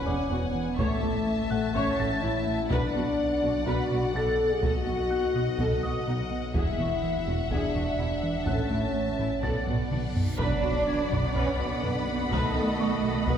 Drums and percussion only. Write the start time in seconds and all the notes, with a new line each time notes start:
0.79 taiko
1.75 taiko
2.70 taiko
3.67 taiko
4.63 taiko
5.58 taiko
6.54 taiko
7.51 taiko
8.47 taiko
9.43 taiko
9.67 taiko low-mid
9.91 taiko mid
10.15 taiko low
10.39 taiko
11.11 taiko low
11.35 taiko
11.84 taiko low
12.31 taiko
13.27 taiko